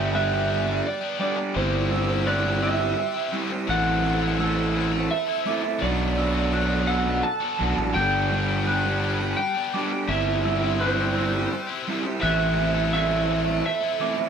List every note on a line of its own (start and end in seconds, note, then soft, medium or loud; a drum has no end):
0.00 0.81 G1 medium
0.00 0.12 G3 medium
0.00 0.13 G3 medium
0.00 0.13 B3 medium
0.00 0.14 D4 medium
0.00 0.15 G4 medium
0.00 1.53 B4 medium
0.00 1.53 D5 medium
0.00 0.14 E5 loud
0.00 1.53 G5 medium
0.00 0.14 G6 medium
0.13 0.47 G3 medium
0.13 0.67 G3 medium
0.13 0.49 B3 medium
0.13 0.33 B3 medium
0.13 0.32 D4 medium
0.13 0.49 D4 medium
0.13 0.31 G4 loud
0.13 0.50 G4 loud
0.13 0.86 E5 loud
0.13 0.85 F#6 medium
0.32 0.68 B3 medium
0.32 0.67 D4 medium
0.32 0.66 G4 medium
0.48 1.02 G3 medium
0.48 0.66 B3 medium
0.48 0.65 D4 medium
0.48 0.65 G4 medium
0.67 0.84 B3 medium
0.67 0.84 D4 medium
0.67 0.85 G4 medium
0.67 muted distorted electric guitar stroke medium
0.85 1.20 D5 loud
0.85 muted overdriven electric guitar stroke soft
1.01 1.37 B3 medium
1.01 1.37 D4 medium
1.01 1.36 G4 medium
1.19 1.53 G3 medium
1.19 1.38 B3 medium
1.19 1.37 D4 medium
1.19 1.36 G4 medium
1.19 1.57 D5 loud
1.19 1.91 D6 medium
1.37 1.54 B3 medium
1.37 1.54 D4 medium
1.37 1.53 G4 medium
1.37 muted distorted electric guitar stroke medium
1.54 2.94 G1 medium
1.54 2.24 G3 loud
1.54 1.89 G3 medium
1.54 2.11 C4 loud
1.54 1.91 C4 medium
1.54 1.91 E4 medium
1.54 2.09 E4 medium
1.54 3.66 G4 medium
1.54 1.91 G4 loud
1.54 2.06 G4 loud
1.54 5.78 C5 medium
1.54 2.27 C5 medium
1.54 5.78 E5 medium
1.54 3.66 C6 medium
1.91 2.25 G3 medium
1.91 2.27 C4 medium
1.91 2.27 E4 medium
1.91 2.27 G4 medium
1.91 2.27 E6 medium
2.07 2.26 C4 medium
2.07 2.27 E4 medium
2.07 2.27 G4 medium
2.25 2.60 G3 medium
2.25 2.80 G3 medium
2.25 2.61 C4 medium
2.25 2.44 C4 loud
2.25 2.62 E4 medium
2.25 2.44 E4 loud
2.25 2.43 G4 loud
2.25 2.63 G4 medium
2.25 2.63 D5 loud
2.25 2.62 F#6 medium
2.44 2.80 C4 medium
2.44 2.79 E4 medium
2.44 2.78 G4 medium
2.61 3.15 G3 medium
2.61 2.79 C4 medium
2.61 2.79 E4 medium
2.61 2.78 G4 medium
2.61 3.30 E5 medium
2.61 3.34 E6 medium
2.79 2.97 C4 medium
2.79 2.97 E4 medium
2.79 2.97 G4 medium
2.79 muted distorted electric guitar stroke medium
2.98 muted overdriven electric guitar stroke soft
3.14 3.50 C4 medium
3.14 3.50 E4 medium
3.14 3.49 G4 medium
3.33 3.66 G3 medium
3.33 3.51 C4 medium
3.33 3.50 E4 medium
3.33 3.49 G4 medium
3.50 3.67 C4 medium
3.50 3.67 E4 medium
3.50 3.66 G4 medium
3.50 muted distorted electric guitar stroke medium
3.67 5.07 A1 loud
3.67 4.38 A3 loud
3.67 4.03 A3 medium
3.67 4.03 C4 loud
3.67 4.23 C4 loud
3.67 4.04 E4 loud
3.67 4.21 E4 loud
3.67 5.80 A4 medium
3.67 4.05 A4 loud
3.67 4.20 A4 loud
3.67 5.11 F#5 loud
3.67 7.92 B5 medium
3.67 4.40 F#6 medium
4.03 4.39 A3 medium
4.03 4.39 C4 medium
4.03 4.39 E4 medium
4.03 4.41 A4 medium
4.21 4.38 C4 medium
4.21 4.39 E4 medium
4.21 4.41 A4 medium
4.38 4.72 A3 medium
4.38 4.93 A3 loud
4.38 4.73 C4 medium
4.38 4.58 C4 loud
4.38 4.74 E4 medium
4.38 4.57 E4 loud
4.38 4.75 A4 medium
4.38 4.56 A4 loud
4.38 5.11 E6 medium
4.57 4.93 C4 medium
4.57 4.92 E4 medium
4.57 4.92 A4 medium
4.73 5.27 A3 medium
4.73 4.91 C4 medium
4.73 4.91 E4 medium
4.73 4.90 A4 medium
4.92 5.09 C4 medium
4.92 5.09 E4 medium
4.92 5.10 A4 medium
4.92 muted distorted electric guitar stroke medium
5.10 5.84 E5 loud
5.10 muted overdriven electric guitar stroke soft
5.26 5.62 C4 medium
5.26 5.61 E4 medium
5.26 5.61 A4 medium
5.46 5.80 A3 medium
5.46 5.64 C4 medium
5.46 5.63 E4 medium
5.46 5.62 A4 loud
5.46 6.18 D6 medium
5.62 5.80 C4 medium
5.62 5.80 E4 medium
5.62 5.80 A4 medium
5.62 muted distorted electric guitar stroke medium
5.79 7.20 B1 medium
5.79 6.50 B2 medium
5.79 6.52 B2 medium
5.79 6.51 F#3 loud
5.79 6.16 F#3 medium
5.79 6.36 B3 loud
5.79 6.17 B3 loud
5.79 6.35 D4 loud
5.79 6.17 D4 loud
5.79 6.33 F#4 loud
5.79 6.92 D5 medium
5.83 6.18 F#4 medium
5.83 7.94 A4 medium
5.83 10.06 D5 medium
5.83 10.06 A5 medium
6.17 6.53 F#3 medium
6.17 6.53 B3 medium
6.17 6.54 D4 medium
6.17 6.54 F#4 medium
6.17 6.53 E6 medium
6.34 6.52 B3 medium
6.34 6.53 D4 medium
6.34 6.54 F#4 medium
6.51 7.23 B2 medium
6.51 7.06 B2 medium
6.51 6.86 F#3 medium
6.51 7.07 F#3 loud
6.51 6.87 B3 medium
6.51 6.71 B3 loud
6.51 6.88 D4 medium
6.51 6.70 D4 loud
6.51 6.89 F#4 medium
6.51 6.69 F#4 loud
6.51 6.89 F#6 medium
6.70 7.07 B3 medium
6.70 7.06 D4 medium
6.70 7.05 F#4 medium
6.87 7.05 F#3 medium
6.87 7.05 B3 medium
6.87 7.05 D4 medium
6.87 7.05 F#4 loud
6.87 7.25 F#5 loud
6.87 7.60 E6 medium
7.06 7.23 B3 medium
7.06 7.23 D4 medium
7.06 7.24 F#4 medium
7.06 muted distorted electric guitar stroke medium
7.23 7.97 A5 loud
7.23 muted overdriven electric guitar stroke soft
7.40 7.76 B3 medium
7.40 7.76 D4 medium
7.40 7.75 F#4 medium
7.59 7.76 B1 medium
7.59 7.93 F#3 medium
7.59 7.79 B3 medium
7.59 7.78 D4 medium
7.59 7.77 F#4 medium
7.77 7.94 A1 medium
7.77 7.94 B3 medium
7.77 7.94 D4 medium
7.77 7.93 F#4 medium
7.77 muted distorted electric guitar stroke medium
7.93 9.34 G1 medium
7.93 8.64 G3 medium
7.93 8.31 G3 medium
7.93 8.49 B3 medium
7.93 8.31 B3 medium
7.93 8.48 D4 medium
7.93 8.31 D4 medium
7.93 12.18 G4 medium
7.93 8.47 G4 loud
7.93 9.36 G5 loud
7.93 10.07 B5 medium
7.93 8.67 G6 loud
7.97 8.33 G4 loud
8.31 8.67 G3 medium
8.31 8.67 B3 medium
8.31 8.67 D4 medium
8.31 8.68 G4 medium
8.47 8.65 B3 medium
8.47 8.66 D4 medium
8.47 8.67 G4 medium
8.65 9.00 G3 medium
8.65 9.20 G3 loud
8.65 9.01 B3 medium
8.65 8.85 B3 loud
8.65 9.02 D4 medium
8.65 8.85 D4 loud
8.65 9.03 G4 medium
8.65 8.83 G4 loud
8.65 9.38 F#6 medium
8.85 9.21 B3 medium
8.85 9.20 D4 medium
8.85 9.19 G4 medium
9.01 9.55 G3 medium
9.01 9.19 B3 loud
9.01 9.19 D4 medium
9.01 9.18 G4 medium
9.19 9.37 B3 medium
9.19 9.38 D4 medium
9.19 9.38 G4 medium
9.19 muted distorted electric guitar stroke medium
9.37 10.11 G5 loud
9.37 muted overdriven electric guitar stroke soft
9.55 9.90 B3 medium
9.55 9.90 D4 medium
9.55 9.89 G4 medium
9.74 10.07 G3 medium
9.74 9.93 B3 medium
9.74 9.92 D4 medium
9.74 9.91 G4 medium
9.74 10.45 D6 medium
9.91 10.08 B3 medium
9.91 10.08 D4 medium
9.91 10.07 G4 medium
9.91 muted distorted electric guitar stroke medium
10.08 11.47 G1 medium
10.08 10.78 G3 loud
10.08 10.44 G3 medium
10.08 10.64 C4 loud
10.08 10.46 C4 loud
10.08 10.62 E4 medium
10.08 10.46 E4 loud
10.08 10.60 G4 loud
10.08 12.20 C5 medium
10.08 10.82 E5 medium
10.08 14.29 E5 medium
10.08 12.20 C6 loud
10.12 10.46 G4 loud
10.45 10.79 G3 medium
10.45 10.81 C4 medium
10.45 10.82 E4 medium
10.45 10.81 G4 medium
10.45 10.80 E6 medium
10.61 10.79 C4 medium
10.61 10.81 E4 medium
10.61 10.81 G4 medium
10.79 11.13 G3 medium
10.79 11.34 G3 loud
10.79 11.15 C4 medium
10.79 11.00 C4 loud
10.79 11.16 E4 medium
10.79 10.99 E4 loud
10.79 11.16 G4 medium
10.79 10.98 G4 loud
10.79 11.83 C5 medium
10.79 11.16 F#6 medium
10.99 11.35 C4 medium
10.99 11.34 E4 medium
10.99 11.33 G4 medium
11.15 11.68 G3 medium
11.15 11.32 C4 medium
11.15 11.32 E4 medium
11.15 11.31 G4 medium
11.15 11.87 E6 medium
11.32 11.51 C4 medium
11.32 11.52 E4 medium
11.32 11.52 G4 medium
11.32 muted distorted electric guitar stroke medium
11.52 muted overdriven electric guitar stroke soft
11.67 12.03 C4 medium
11.67 12.03 E4 medium
11.67 12.02 G4 medium
11.88 12.21 G3 medium
11.88 12.06 C4 medium
11.88 12.05 E4 loud
11.88 12.04 G4 medium
12.04 12.21 C4 medium
12.04 12.21 E4 medium
12.04 12.20 G4 medium
12.04 muted distorted electric guitar stroke medium
12.20 13.61 A1 loud
12.20 12.93 A2 loud
12.20 12.57 E3 loud
12.20 12.92 A3 loud
12.20 12.58 A3 loud
12.20 12.77 C4 loud
12.20 12.58 C4 loud
12.20 12.75 E4 loud
12.20 12.58 E4 loud
12.20 14.29 A4 medium
12.20 12.74 A4 loud
12.20 14.29 C5 medium
12.20 12.92 E5 loud
12.20 14.29 B5 medium
12.20 12.93 F#6 loud
12.58 12.93 E3 medium
12.58 12.95 A3 medium
12.58 12.94 C4 medium
12.58 12.95 E4 loud
12.74 12.92 C4 medium
12.74 12.93 E4 medium
12.74 12.95 A4 medium
12.92 13.47 A2 loud
12.92 13.47 E3 loud
12.92 13.26 A3 medium
12.92 13.12 A3 loud
12.92 13.27 C4 medium
12.92 13.12 C4 loud
12.92 13.28 E4 medium
12.92 13.11 E4 loud
12.92 13.30 A4 medium
12.92 13.65 E5 loud
12.92 13.65 E6 medium
13.12 13.48 A3 medium
13.12 13.46 C4 medium
13.12 13.46 E4 medium
13.27 13.81 A3 medium
13.27 13.45 C4 medium
13.27 13.45 E4 medium
13.27 13.44 A4 medium
13.45 13.64 A3 medium
13.45 13.64 C4 medium
13.45 13.64 E4 medium
13.45 muted distorted electric guitar stroke medium
13.64 14.29 E5 loud
13.64 muted overdriven electric guitar stroke soft
13.80 14.16 C4 medium
13.80 14.16 E4 medium
13.80 14.16 A4 medium
14.00 14.29 E3 medium
14.00 14.18 A3 medium
14.00 14.18 C4 medium
14.00 14.17 E4 medium
14.00 14.29 D6 medium
14.17 14.29 A3 medium
14.17 14.29 C4 medium
14.17 14.29 E4 medium
14.17 muted distorted electric guitar stroke medium